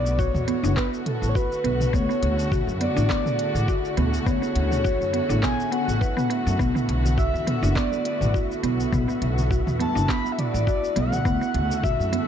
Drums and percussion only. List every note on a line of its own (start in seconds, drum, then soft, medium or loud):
0.06 shaker medium
0.19 kick loud
0.19 shaker medium
0.35 mid tom medium
0.35 shaker soft
0.48 closed hi-hat medium
0.65 shaker medium
0.77 kick loud
0.77 clap medium
0.77 shaker medium
0.94 shaker soft
1.06 closed hi-hat medium
1.06 mid tom medium
1.23 shaker medium
1.35 kick loud
1.35 shaker medium
1.52 shaker soft
1.65 closed hi-hat medium
1.81 mid tom medium
1.81 shaker medium
1.94 kick loud
1.94 shaker medium
2.10 shaker soft
2.23 closed hi-hat medium
2.39 shaker medium
2.52 kick loud
2.52 mid tom medium
2.52 shaker medium
2.69 shaker soft
2.81 closed hi-hat medium
2.97 shaker medium
3.10 kick loud
3.10 clap medium
3.10 shaker medium
3.26 mid tom medium
3.26 shaker soft
3.39 closed hi-hat medium
3.56 shaker medium
3.68 kick loud
3.68 shaker medium
3.85 shaker soft
3.97 closed hi-hat medium
3.97 mid tom medium
4.14 shaker medium
4.27 kick loud
4.27 shaker medium
4.43 shaker soft
4.55 closed hi-hat medium
4.71 mid tom medium
4.71 shaker medium
4.85 kick loud
4.85 shaker medium
5.01 shaker soft
5.14 closed hi-hat medium
5.30 shaker medium
5.43 kick loud
5.43 clap medium
5.43 mid tom medium
5.43 shaker medium
5.60 shaker soft
5.72 closed hi-hat medium
5.89 shaker medium
6.01 kick loud
6.01 shaker medium
6.18 mid tom medium
6.18 shaker soft
6.30 closed hi-hat medium
6.48 shaker medium
6.60 kick loud
6.60 shaker medium
6.76 mid tom medium
6.76 muted conga soft
6.76 shaker soft
6.89 closed hi-hat medium
7.05 low conga medium
7.05 shaker medium
7.18 kick loud
7.18 shaker medium
7.35 shaker soft
7.47 closed hi-hat medium
7.47 mid tom medium
7.47 muted conga medium
7.47 high conga medium
7.64 shaker medium
7.76 kick loud
7.76 clap medium
7.76 shaker medium
7.92 muted conga soft
7.92 high conga medium
7.92 shaker soft
8.05 closed hi-hat medium
8.21 mid tom medium
8.21 muted conga soft
8.21 shaker medium
8.34 kick loud
8.34 shaker medium
8.51 shaker soft
8.64 closed hi-hat medium
8.64 muted conga medium
8.64 high conga medium
8.80 shaker medium
8.93 kick loud
8.93 mid tom medium
8.93 shaker medium
9.09 muted conga soft
9.09 shaker soft
9.22 closed hi-hat medium
9.38 low conga medium
9.38 shaker medium
9.51 kick loud
9.51 shaker medium
9.67 mid tom medium
9.67 shaker soft
9.80 closed hi-hat medium
9.80 muted conga medium
9.80 high conga medium
9.97 shaker medium
10.09 kick loud
10.09 clap medium
10.09 shaker medium
10.25 muted conga soft
10.25 shaker soft
10.39 closed hi-hat medium
10.39 mid tom medium
10.55 shaker medium
10.67 kick loud
10.67 shaker medium
10.84 shaker soft
10.96 closed hi-hat medium
10.96 muted conga medium
10.96 high conga medium
11.12 mid tom medium
11.12 muted conga soft
11.12 high conga medium
11.12 low conga medium
11.12 shaker medium
11.25 kick loud
11.25 shaker medium
11.41 muted conga soft
11.41 shaker soft
11.54 closed hi-hat medium
11.71 low conga medium
11.71 shaker medium
11.84 kick loud
11.84 mid tom medium
11.84 shaker medium
12.01 shaker soft
12.13 closed hi-hat medium
12.13 muted conga medium
12.13 high conga medium